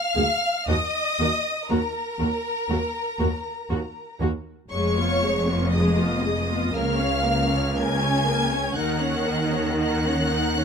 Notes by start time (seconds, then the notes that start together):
Already playing: F5 F6
0.15 D2 A#3 G#4
0.67 D#2 A#3 F#4 D#5 D#6
1.20 D#2 A#3 F#4
1.69 D#2 A#3 F#4 A#4 A#5
2.19 D#2 A#3 F#4
2.69 D#2 A#3 F#4
3.19 D#2 A#3 F#4
3.70 D#2 A#3 F#4
4.20 D#2 A#3 F#4
4.70 F1 F2 G#3 G#4 C#5 C#6
4.98 B3 F4
5.23 G#3 G#4
5.49 B3 F4
5.72 G#3 G#4 D#5 D#6
5.99 B3 F4
6.24 G#3 G#4
6.50 B3 F4
6.74 C#2 C#3 A#3 A#4 F5 F6
6.99 C#4 C#5
7.25 A#3 A#4
7.50 C#4 C#5
7.77 A#3 A#4 G#5 G#6
8.02 C#4 C#5
8.27 A#3 A#4
8.53 C#4 C#5
8.76 D#2 D#3 D#4 A#4 F#5 F#6
9.02 C#4 C#5
9.27 D#4 A#4
9.54 C#4 C#5
9.79 D#4 A#4 F#5 F#6
10.06 C#4 C#5
10.32 D#4 A#4
10.57 C#4 C#5